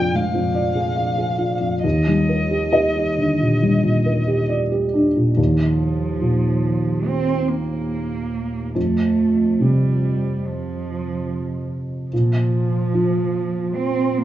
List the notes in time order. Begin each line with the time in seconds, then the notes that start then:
Already playing: A#1 F2 G#3 F4 G#4 D5 F5 G5
0.14 G#3 F5
0.34 F2
0.54 D5
0.75 G#4
0.96 F5
1.18 G#4
1.38 F4
1.60 F2
1.83 D#2 D#5
2.07 G3
2.29 A#4
2.51 G4
2.73 D#5
2.96 G4
3.17 D3
3.40 A#2
3.62 G3
3.83 A#2
4.06 A#4
4.27 G4
4.49 D5
4.72 G4
4.93 D4
5.16 A#2
5.37 D#2 F3
6.21 A#2
7.06 C4
7.48 A#3
8.75 F2 A3
9.60 C3 G3
10.47 F3
12.11 A#2 F3
12.94 F3
13.75 C4
14.18 A#3